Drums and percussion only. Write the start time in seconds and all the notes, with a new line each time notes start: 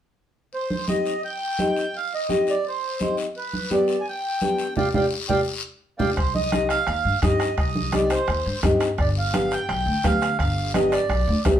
0.53 long guiro
0.70 high conga
0.88 high conga, short guiro
1.06 short guiro
1.23 long guiro
1.59 high conga, short guiro
1.76 short guiro
1.94 long guiro
2.29 high conga, short guiro
2.47 short guiro
2.65 long guiro
3.00 high conga, short guiro
3.17 short guiro
3.35 long guiro
3.53 high conga
3.70 high conga, short guiro
3.88 short guiro
4.06 long guiro
4.41 high conga, short guiro
4.58 short guiro
4.76 low conga, long guiro
4.93 low conga, long guiro
5.29 low conga, long guiro
5.99 low conga, long guiro
6.17 bombo low, bombo rim, high timbale, long guiro
6.35 high conga
6.52 bombo rim, high conga, high timbale, short guiro
6.69 bombo rim, high timbale, short guiro
6.87 bombo rim, high timbale, long guiro
7.22 bombo low, bombo rim, high conga, high timbale, short guiro
7.40 bombo rim, high timbale, short guiro
7.58 bombo low, bombo rim, high timbale, long guiro
7.75 high conga
7.92 bombo rim, high conga, high timbale, short guiro
8.10 bombo rim, high timbale, short guiro
8.27 bombo rim, high timbale, long guiro
8.63 bombo low, bombo rim, high conga, high timbale, short guiro
8.80 bombo rim, high timbale, short guiro
8.98 bombo low, bombo rim, high timbale, long guiro
9.33 bombo rim, high conga, high timbale, short guiro
9.51 bombo rim, high timbale, short guiro
9.69 bombo rim, high timbale, long guiro
10.04 bombo low, bombo rim, high conga, high timbale, short guiro
10.21 bombo rim, high timbale, short guiro
10.39 bombo low, bombo rim, high timbale, long guiro
10.74 bombo rim, high conga, high timbale, short guiro
10.92 bombo rim, high timbale, short guiro
11.09 bombo rim, high timbale, long guiro
11.45 bombo low, bombo rim, high conga, high timbale, low timbale, short guiro